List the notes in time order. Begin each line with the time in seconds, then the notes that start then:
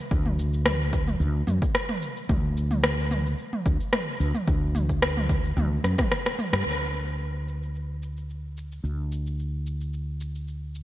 0.11 D2, kick, shaker
0.26 mid tom
0.39 shaker
0.53 shaker
0.66 cross-stick, mid tom, shaker
0.93 kick, shaker
1.07 mid tom, shaker
1.20 D2, shaker
1.47 F#2, mid tom, shaker
1.62 kick, shaker
1.75 cross-stick, shaker
1.89 cross-stick, mid tom
2.02 shaker
2.17 shaker
2.29 D2, kick, mid tom, shaker
2.57 shaker
2.71 mid tom, shaker
2.84 cross-stick, shaker
3.11 mid tom, shaker
3.26 shaker
3.39 shaker
3.53 mid tom
3.66 D2, kick, shaker
3.80 shaker
3.93 cross-stick, mid tom, shaker
4.20 D2, shaker
4.35 mid tom, shaker
4.48 D2, kick, shaker
4.75 mid tom, shaker
4.89 kick, shaker
5.02 cross-stick, shaker
5.17 mid tom
5.29 kick, shaker
5.45 shaker
5.57 D2, mid tom, shaker
5.84 F#2, cross-stick, shaker
5.98 kick, cross-stick, mid tom, shaker
6.12 cross-stick, shaker
6.26 cross-stick
6.39 mid tom, shaker
6.53 G2, cross-stick, shaker
6.65 D2, shaker
6.94 shaker
7.08 shaker
7.21 shaker
7.48 shaker
7.63 shaker
7.75 shaker
8.03 shaker
8.17 shaker
8.30 shaker
8.57 shaker
8.72 shaker
8.84 D2, shaker
9.12 shaker
9.27 shaker
9.39 shaker
9.66 shaker
9.81 shaker
9.93 shaker
10.21 shaker
10.35 shaker
10.48 shaker
10.75 shaker